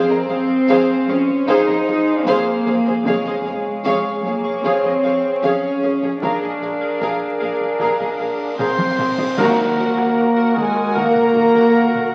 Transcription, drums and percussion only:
0, 0, Header, 1, 3, 480
1, 0, Start_track
1, 0, Key_signature, -4, "minor"
1, 0, Tempo, 789474
1, 1859, Time_signature, 4, 2, 24, 8
1, 7385, End_track
2, 0, Start_track
2, 0, Title_t, "Taiko and cinematic ensemble drums"
2, 418, Note_on_c, 9, 41, 75
2, 479, Note_off_c, 9, 41, 0
2, 780, Note_on_c, 9, 43, 52
2, 840, Note_off_c, 9, 43, 0
2, 899, Note_on_c, 9, 41, 77
2, 959, Note_off_c, 9, 41, 0
2, 1022, Note_on_c, 9, 43, 55
2, 1083, Note_off_c, 9, 43, 0
2, 1381, Note_on_c, 9, 41, 82
2, 1442, Note_off_c, 9, 41, 0
2, 1743, Note_on_c, 9, 43, 48
2, 1804, Note_off_c, 9, 43, 0
2, 1859, Note_on_c, 9, 41, 89
2, 1920, Note_off_c, 9, 41, 0
2, 2340, Note_on_c, 9, 41, 77
2, 2401, Note_off_c, 9, 41, 0
2, 2699, Note_on_c, 9, 43, 51
2, 2760, Note_off_c, 9, 43, 0
2, 2819, Note_on_c, 9, 41, 80
2, 2879, Note_off_c, 9, 41, 0
2, 2938, Note_on_c, 9, 43, 54
2, 2999, Note_off_c, 9, 43, 0
2, 3300, Note_on_c, 9, 41, 80
2, 3361, Note_off_c, 9, 41, 0
2, 3663, Note_on_c, 9, 43, 48
2, 3724, Note_off_c, 9, 43, 0
2, 3783, Note_on_c, 9, 41, 94
2, 3844, Note_off_c, 9, 41, 0
2, 4263, Note_on_c, 9, 41, 74
2, 4323, Note_off_c, 9, 41, 0
2, 4622, Note_on_c, 9, 43, 48
2, 4682, Note_off_c, 9, 43, 0
2, 4743, Note_on_c, 9, 41, 75
2, 4803, Note_off_c, 9, 41, 0
2, 4866, Note_on_c, 9, 43, 56
2, 4926, Note_off_c, 9, 43, 0
2, 5222, Note_on_c, 9, 47, 80
2, 5283, Note_off_c, 9, 47, 0
2, 5344, Note_on_c, 9, 48, 93
2, 5405, Note_off_c, 9, 48, 0
2, 5464, Note_on_c, 9, 47, 84
2, 5525, Note_off_c, 9, 47, 0
2, 5583, Note_on_c, 9, 43, 93
2, 5644, Note_off_c, 9, 43, 0
2, 5704, Note_on_c, 9, 41, 96
2, 5764, Note_off_c, 9, 41, 0
2, 6064, Note_on_c, 9, 37, 42
2, 6125, Note_off_c, 9, 37, 0
2, 6422, Note_on_c, 9, 41, 80
2, 6483, Note_off_c, 9, 41, 0
2, 6542, Note_on_c, 9, 37, 38
2, 6603, Note_off_c, 9, 37, 0
2, 6663, Note_on_c, 9, 41, 83
2, 6724, Note_off_c, 9, 41, 0
2, 6783, Note_on_c, 9, 47, 65
2, 6844, Note_off_c, 9, 47, 0
2, 6904, Note_on_c, 9, 47, 68
2, 6965, Note_off_c, 9, 47, 0
2, 7020, Note_on_c, 9, 41, 77
2, 7081, Note_off_c, 9, 41, 0
2, 7263, Note_on_c, 9, 47, 60
2, 7324, Note_off_c, 9, 47, 0
2, 7385, End_track
3, 0, Start_track
3, 0, Title_t, "Drums"
3, 5702, Note_on_c, 9, 35, 78
3, 5702, Note_on_c, 9, 49, 75
3, 5763, Note_off_c, 9, 35, 0
3, 5763, Note_off_c, 9, 49, 0
3, 7385, End_track
0, 0, End_of_file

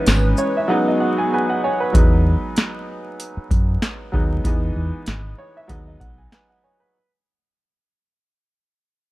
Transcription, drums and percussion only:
0, 0, Header, 1, 2, 480
1, 0, Start_track
1, 0, Key_signature, 4, "major"
1, 0, Tempo, 625000
1, 1493, Time_signature, 4, 2, 24, 8
1, 6996, End_track
2, 0, Start_track
2, 0, Title_t, "Drums"
2, 50, Note_on_c, 9, 42, 76
2, 55, Note_on_c, 9, 54, 75
2, 60, Note_on_c, 9, 38, 114
2, 127, Note_off_c, 9, 42, 0
2, 132, Note_off_c, 9, 54, 0
2, 136, Note_off_c, 9, 38, 0
2, 288, Note_on_c, 9, 82, 51
2, 365, Note_off_c, 9, 82, 0
2, 1494, Note_on_c, 9, 36, 120
2, 1497, Note_on_c, 9, 42, 107
2, 1571, Note_off_c, 9, 36, 0
2, 1574, Note_off_c, 9, 42, 0
2, 1970, Note_on_c, 9, 42, 73
2, 1979, Note_on_c, 9, 38, 113
2, 2046, Note_off_c, 9, 42, 0
2, 2056, Note_off_c, 9, 38, 0
2, 2455, Note_on_c, 9, 42, 98
2, 2532, Note_off_c, 9, 42, 0
2, 2694, Note_on_c, 9, 36, 95
2, 2698, Note_on_c, 9, 42, 56
2, 2771, Note_off_c, 9, 36, 0
2, 2775, Note_off_c, 9, 42, 0
2, 2936, Note_on_c, 9, 38, 113
2, 2939, Note_on_c, 9, 42, 79
2, 3013, Note_off_c, 9, 38, 0
2, 3016, Note_off_c, 9, 42, 0
2, 3176, Note_on_c, 9, 36, 94
2, 3253, Note_off_c, 9, 36, 0
2, 3414, Note_on_c, 9, 36, 120
2, 3417, Note_on_c, 9, 42, 105
2, 3491, Note_off_c, 9, 36, 0
2, 3493, Note_off_c, 9, 42, 0
2, 3889, Note_on_c, 9, 42, 70
2, 3899, Note_on_c, 9, 38, 114
2, 3966, Note_off_c, 9, 42, 0
2, 3975, Note_off_c, 9, 38, 0
2, 4373, Note_on_c, 9, 42, 100
2, 4374, Note_on_c, 9, 36, 97
2, 4450, Note_off_c, 9, 36, 0
2, 4450, Note_off_c, 9, 42, 0
2, 4614, Note_on_c, 9, 36, 94
2, 4618, Note_on_c, 9, 42, 56
2, 4690, Note_off_c, 9, 36, 0
2, 4694, Note_off_c, 9, 42, 0
2, 4856, Note_on_c, 9, 38, 108
2, 4858, Note_on_c, 9, 42, 76
2, 4932, Note_off_c, 9, 38, 0
2, 4935, Note_off_c, 9, 42, 0
2, 6996, End_track
0, 0, End_of_file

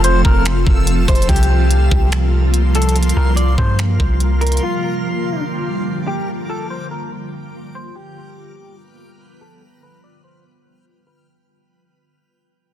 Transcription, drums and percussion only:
0, 0, Header, 1, 2, 480
1, 0, Start_track
1, 0, Tempo, 416667
1, 1484, Time_signature, 4, 2, 24, 8
1, 14672, End_track
2, 0, Start_track
2, 0, Title_t, "Drums"
2, 46, Note_on_c, 9, 42, 70
2, 161, Note_off_c, 9, 42, 0
2, 286, Note_on_c, 9, 36, 101
2, 401, Note_off_c, 9, 36, 0
2, 524, Note_on_c, 9, 42, 85
2, 529, Note_on_c, 9, 26, 121
2, 639, Note_off_c, 9, 42, 0
2, 644, Note_off_c, 9, 26, 0
2, 767, Note_on_c, 9, 36, 90
2, 882, Note_off_c, 9, 36, 0
2, 1003, Note_on_c, 9, 42, 74
2, 1119, Note_off_c, 9, 42, 0
2, 1246, Note_on_c, 9, 36, 98
2, 1246, Note_on_c, 9, 42, 59
2, 1327, Note_off_c, 9, 42, 0
2, 1327, Note_on_c, 9, 42, 59
2, 1361, Note_off_c, 9, 36, 0
2, 1406, Note_off_c, 9, 42, 0
2, 1406, Note_on_c, 9, 42, 59
2, 1485, Note_on_c, 9, 36, 101
2, 1486, Note_off_c, 9, 42, 0
2, 1486, Note_on_c, 9, 42, 60
2, 1566, Note_off_c, 9, 42, 0
2, 1566, Note_on_c, 9, 42, 56
2, 1600, Note_off_c, 9, 36, 0
2, 1645, Note_off_c, 9, 42, 0
2, 1645, Note_on_c, 9, 42, 61
2, 1761, Note_off_c, 9, 42, 0
2, 1965, Note_on_c, 9, 42, 67
2, 2080, Note_off_c, 9, 42, 0
2, 2206, Note_on_c, 9, 36, 106
2, 2321, Note_off_c, 9, 36, 0
2, 2444, Note_on_c, 9, 42, 85
2, 2448, Note_on_c, 9, 26, 113
2, 2559, Note_off_c, 9, 42, 0
2, 2563, Note_off_c, 9, 26, 0
2, 2923, Note_on_c, 9, 42, 73
2, 3038, Note_off_c, 9, 42, 0
2, 3165, Note_on_c, 9, 42, 60
2, 3246, Note_off_c, 9, 42, 0
2, 3246, Note_on_c, 9, 42, 58
2, 3326, Note_off_c, 9, 42, 0
2, 3326, Note_on_c, 9, 42, 57
2, 3405, Note_off_c, 9, 42, 0
2, 3405, Note_on_c, 9, 42, 55
2, 3485, Note_off_c, 9, 42, 0
2, 3485, Note_on_c, 9, 42, 55
2, 3565, Note_off_c, 9, 42, 0
2, 3565, Note_on_c, 9, 42, 58
2, 3680, Note_off_c, 9, 42, 0
2, 3884, Note_on_c, 9, 42, 70
2, 3999, Note_off_c, 9, 42, 0
2, 4125, Note_on_c, 9, 36, 105
2, 4240, Note_off_c, 9, 36, 0
2, 4364, Note_on_c, 9, 42, 84
2, 4368, Note_on_c, 9, 26, 115
2, 4479, Note_off_c, 9, 42, 0
2, 4483, Note_off_c, 9, 26, 0
2, 4606, Note_on_c, 9, 36, 85
2, 4721, Note_off_c, 9, 36, 0
2, 4843, Note_on_c, 9, 42, 72
2, 4958, Note_off_c, 9, 42, 0
2, 5085, Note_on_c, 9, 42, 43
2, 5145, Note_off_c, 9, 42, 0
2, 5145, Note_on_c, 9, 42, 52
2, 5205, Note_off_c, 9, 42, 0
2, 5205, Note_on_c, 9, 42, 61
2, 5265, Note_off_c, 9, 42, 0
2, 5265, Note_on_c, 9, 42, 68
2, 5380, Note_off_c, 9, 42, 0
2, 14672, End_track
0, 0, End_of_file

